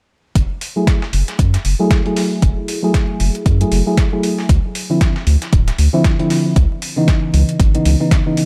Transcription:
0.35 0.45 F#1 medium
0.35 kick loud
0.35 closed hi-hat medium
0.61 closed hi-hat medium
0.61 open hi-hat loud
0.76 1.01 F#3 medium
0.76 1.02 A3 medium
0.76 1.02 E4 medium
0.76 1.02 G#4 medium
0.87 kick loud
0.87 snare loud
0.87 closed hi-hat medium
1.02 snare soft
1.13 1.23 F#1 loud
1.13 closed hi-hat medium
1.13 open hi-hat medium
1.28 snare soft
1.28 closed hi-hat medium
1.39 1.57 F#2 medium
1.39 kick loud
1.39 closed hi-hat medium
1.54 snare medium
1.54 closed hi-hat medium
1.65 1.75 F#1 medium
1.65 closed hi-hat medium
1.65 open hi-hat loud
1.79 2.01 F#3 medium
1.79 2.01 A3 medium
1.79 2.01 E4 medium
1.79 2.01 G#4 loud
1.91 kick loud
1.91 snare loud
1.91 closed hi-hat medium
2.05 2.79 F#3 medium
2.05 2.80 A3 medium
2.05 2.80 E4 medium
2.05 2.80 G#4 medium
2.05 closed hi-hat soft
2.17 snare soft
2.17 open hi-hat medium
2.42 2.52 F#1 medium
2.42 kick loud
2.42 closed hi-hat medium
2.68 closed hi-hat medium
2.68 open hi-hat loud
2.83 3.57 F#3 medium
2.83 3.57 A3 medium
2.83 3.57 E4 medium
2.83 3.58 G#4 medium
2.94 kick loud
2.94 snare loud
2.94 closed hi-hat medium
3.20 3.30 F#1 loud
3.20 closed hi-hat medium
3.20 open hi-hat medium
3.35 closed hi-hat soft
3.46 3.64 F#2 loud
3.46 kick loud
3.46 closed hi-hat medium
3.60 3.83 F#3 medium
3.60 3.83 A3 medium
3.60 3.83 E4 medium
3.60 3.83 G#4 medium
3.60 closed hi-hat soft
3.72 3.82 F#1 medium
3.72 closed hi-hat medium
3.72 open hi-hat loud
3.86 4.09 F#3 medium
3.86 4.09 A3 medium
3.86 4.09 E4 medium
3.86 4.09 G#4 medium
3.97 kick loud
3.97 snare loud
3.97 closed hi-hat medium
4.12 4.48 F#3 medium
4.12 4.48 A3 medium
4.12 4.48 E4 medium
4.12 4.48 G#4 medium
4.23 closed hi-hat medium
4.23 open hi-hat medium
4.38 snare soft
4.49 4.59 D2 loud
4.49 kick loud
4.49 closed hi-hat medium
4.75 closed hi-hat medium
4.75 open hi-hat loud
4.90 5.15 D3 medium
4.90 5.15 F3 medium
4.90 5.15 C4 medium
4.90 5.16 E4 medium
5.01 kick loud
5.01 snare loud
5.01 closed hi-hat medium
5.16 snare medium
5.27 5.37 D2 medium
5.27 closed hi-hat medium
5.27 open hi-hat medium
5.42 snare soft
5.42 closed hi-hat soft
5.53 5.71 D1 loud
5.53 kick loud
5.53 closed hi-hat medium
5.68 snare medium
5.68 closed hi-hat soft
5.79 5.88 D2 medium
5.79 closed hi-hat medium
5.79 open hi-hat loud
5.93 6.15 D3 medium
5.93 6.15 F3 medium
5.93 6.15 C4 medium
5.93 6.15 E4 loud
6.04 kick loud
6.04 snare loud
6.04 closed hi-hat medium
6.19 6.55 D3 medium
6.19 6.55 F3 medium
6.19 6.55 C4 medium
6.19 6.55 E4 loud
6.19 closed hi-hat soft
6.30 snare soft
6.30 open hi-hat medium
6.56 6.66 C#2 loud
6.56 kick loud
6.56 closed hi-hat medium
6.82 closed hi-hat medium
6.82 open hi-hat loud
6.96 7.71 C#3 medium
6.96 7.71 E3 medium
6.96 7.71 B3 medium
6.96 7.71 D#4 medium
7.08 kick loud
7.08 snare loud
7.08 closed hi-hat medium
7.34 7.44 C#2 loud
7.34 closed hi-hat medium
7.34 open hi-hat medium
7.49 closed hi-hat soft
7.60 7.78 G#1 loud
7.60 kick loud
7.60 closed hi-hat medium
7.74 7.97 C#3 medium
7.74 7.97 E3 medium
7.74 7.97 B3 medium
7.74 7.97 D#4 medium
7.74 closed hi-hat soft
7.85 7.95 C#2 loud
7.85 closed hi-hat medium
7.85 open hi-hat loud
8.00 8.23 C#3 medium
8.00 8.23 E3 medium
8.00 8.23 B3 medium
8.00 8.23 D#4 medium
8.11 kick loud
8.11 snare loud
8.11 closed hi-hat medium
8.26 8.45 C#3 medium
8.26 8.45 E3 medium
8.26 8.45 B3 medium
8.26 8.45 D#4 medium
8.37 closed hi-hat medium
8.37 open hi-hat medium

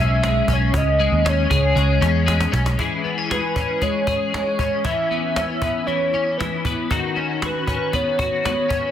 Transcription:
0.00 0.40 B1 medium
0.00 0.23 G#3 medium
0.00 0.49 C#4 medium
0.00 1.50 G#4 medium
0.00 0.54 E5 loud
0.23 0.99 G#3 medium
0.23 cajon slap loud
0.48 0.70 B1 medium
0.48 1.25 C#4 medium
0.48 cajon bass loud
0.53 0.78 C#5 medium
0.74 1.07 C#2 loud
0.74 1.30 D#5 loud
0.74 cajon bass loud
0.99 1.75 G#3 medium
0.99 cajon slap soft
1.12 1.45 D#2 medium
1.25 2.01 C#4 medium
1.25 2.29 C#5 medium
1.25 cajon slap loud
1.50 1.73 C#2 medium
1.50 2.79 G#4 medium
1.50 cajon bass medium
1.75 1.98 C#2 loud
1.75 2.26 G#3 medium
1.75 cajon slap medium
2.01 2.45 E2 medium
2.01 2.52 C#4 medium
2.01 cajon slap medium
2.26 3.81 G#3 medium
2.26 cajon slap medium
2.40 cajon slap medium
2.52 2.75 B1 medium
2.52 3.04 C#4 medium
2.52 cajon slap loud
2.66 cajon slap medium
2.79 4.85 E3 medium
2.79 3.29 G#4 medium
2.79 cajon bass medium
3.04 3.18 B3 medium
3.04 cajon slap soft
3.18 3.55 C#4 soft
3.30 4.06 G#4 medium
3.30 3.84 B4 medium
3.30 cajon slap medium
3.56 4.59 C#4 soft
3.56 cajon bass medium
3.82 4.33 G#3 medium
3.82 4.34 C#5 medium
3.82 cajon bass medium
3.82 cajon slap soft
4.07 4.90 G#4 medium
4.07 cajon bass medium
4.34 4.90 G#3 medium
4.34 4.87 C#5 medium
4.34 cajon slap loud
4.59 4.85 C#4 medium
4.59 cajon bass medium
4.85 5.86 E3 medium
4.85 5.36 C#4 medium
4.85 5.36 E5 loud
4.85 cajon bass medium
5.11 5.62 B3 medium
5.11 cajon slap soft
5.36 6.13 C#4 medium
5.36 5.88 E5 medium
5.36 cajon slap loud
5.62 6.65 B3 soft
5.62 cajon bass medium
5.87 6.38 E3 medium
5.87 6.39 C#5 medium
5.87 cajon slap medium
6.13 7.16 C#4 medium
6.13 cajon slap soft
6.37 6.90 E3 medium
6.37 6.77 B4 medium
6.37 cajon slap loud
6.65 7.19 B3 medium
6.65 cajon bass medium
6.91 8.91 D#3 medium
6.91 7.43 F#4 medium
6.91 cajon bass medium
7.16 7.67 C#4 medium
7.16 cajon slap soft
7.42 8.18 F#4 medium
7.42 7.97 B4 medium
7.42 cajon slap loud
7.67 8.69 C#4 soft
7.67 cajon bass medium
7.93 8.44 B3 medium
7.93 8.45 C#5 medium
7.93 cajon bass medium
7.93 cajon slap medium
8.19 8.91 F#4 medium
8.19 cajon bass medium
8.45 8.91 B3 medium
8.45 8.91 C#5 medium
8.45 cajon slap loud
8.69 8.91 C#4 medium
8.69 cajon bass medium

